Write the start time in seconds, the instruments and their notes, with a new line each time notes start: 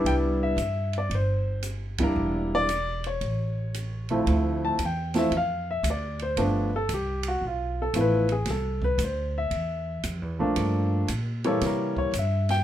Already playing: upright piano G3 B3 D4 E4
0.05 upright bass C2, upright piano G5, ride
0.43 upright piano E5
0.57 upright bass G2, hi-hat pedal, ride
0.93 ride
0.98 upright piano D5
1.10 upright bass G1, ride
1.15 upright piano C5
1.63 hi-hat pedal, ride
1.98 upright piano G3 A#3 D4 E4, kick, ride
2.03 upright piano A#4
2.16 upright bass E1
2.55 upright piano D5
2.69 hi-hat pedal, ride
3.04 upright piano C#5, ride
3.21 upright bass A1, ride
3.74 hi-hat pedal, ride
4.09 upright piano D2 F3 A3 C4 E4, ride
4.26 upright bass D2, ride
4.65 upright piano A5
4.79 upright bass E2, hi-hat pedal, ride
4.85 upright piano G5
5.14 upright piano F3 A3 C4 E4, snare, ride
5.18 upright piano E5
5.31 upright bass F2, ride
5.37 upright piano F5
5.71 upright piano E5
5.83 upright bass D2, hi-hat pedal, ride
5.90 upright piano D5
6.19 upright piano C5, ride
6.37 upright bass G1, upright piano F3 A3 B3 D4, ride
6.42 upright piano B4
6.76 upright piano A4
6.89 upright bass C2, hi-hat pedal, ride
6.94 upright piano G4
7.23 ride
7.28 upright piano F#4
7.41 upright bass B1
7.47 upright piano F4
7.82 upright piano A4
7.94 upright bass A1, upright piano F3 A3 B3 E4, hi-hat pedal, ride
8.01 upright piano B4
8.29 upright piano G#4, ride
8.46 upright bass C2, snare, ride
8.50 upright piano A4
8.82 upright piano B4, kick
8.98 upright bass D2, hi-hat pedal, ride
9.04 upright piano C5
9.38 upright piano E5
9.51 upright bass E2, ride
10.03 upright bass F2, hi-hat pedal, ride
10.22 upright bass E2
10.39 upright bass C2, upright piano F3 A3 A#3 D4
10.56 upright bass G2, ride
11.08 upright bass A#2, hi-hat pedal, ride
11.44 upright piano E3 G3 A#3 A4 C#5, ride
11.61 upright bass C3, snare, ride
11.66 upright piano A#4
11.97 upright piano C#5, kick
12.13 upright bass G2, hi-hat pedal, ride
12.19 upright piano E5
12.49 upright piano G5, snare, ride